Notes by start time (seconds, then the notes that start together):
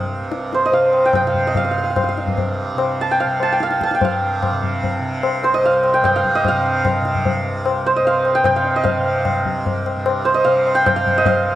Already playing: C2 G2 C3 C5 D#5 F5 G5
0.21 G2
0.32 tabla te
0.53 C5, tabla te
0.66 D#5
0.72 C3 F5, tabla tin
0.93 tabla na
1.05 G5
1.13 G5, tabla na, tabla ge
1.22 C3
1.27 F5
1.34 tabla ge
1.47 D#5
1.55 F5, tabla tin, tabla ge
1.65 F5
1.71 C2 F5
1.78 F5
1.84 F5
1.90 F5
1.96 F5, tabla na, tabla ge
2.04 F5
2.09 F5
2.17 tabla te
2.24 G2, tabla ge
2.37 tabla tin, tabla ge
2.75 C3, tabla na
3.01 A5
3.11 G5
3.20 C3 F5, tabla tin
3.40 A5, tabla na
3.52 G5
3.60 F5, tabla te
3.71 C2, tabla te
3.81 A5, tabla ke
3.91 G5, tabla te
4.00 G2, tabla tin, tabla ge
4.05 F5
4.43 tabla na, tabla ge
4.51 C3
4.63 tabla ge
4.83 tabla tin, tabla ge
4.99 C3
5.23 tabla na
5.43 C5, tabla na
5.49 C2
5.54 D#5
5.64 F5, tabla tin
5.84 tabla na
5.94 G5
6.01 G2 G5, tabla na, tabla ge
6.16 F5
6.24 tabla ge
6.35 D#5
6.45 F5, tabla tin, tabla ge
6.50 C3
6.85 tabla na, tabla ge
7.01 C3
7.05 tabla te
7.15 tabla ge
7.25 tabla tin, tabla ge
7.51 C2
7.66 tabla na
7.86 C5
7.96 G2 D#5
8.05 F5, tabla tin
8.25 tabla na
8.35 G5
8.44 C3 G5, tabla na, tabla ge
8.56 F5
8.64 tabla te
8.76 D#5
8.84 F5, tabla tin, tabla ge
8.97 C3
9.25 tabla na, tabla ge
9.45 C2, tabla ge
9.66 tabla tin, tabla ge
9.86 tabla na
9.95 G2
10.06 tabla na
10.25 C5
10.34 D#5
10.44 C3 F5, tabla tin
10.67 tabla na
10.75 G5
10.86 G5, tabla na, tabla ge
10.94 C3 F5
11.07 tabla ge
11.18 D#5
11.26 F5, tabla tin, tabla ge
11.42 C2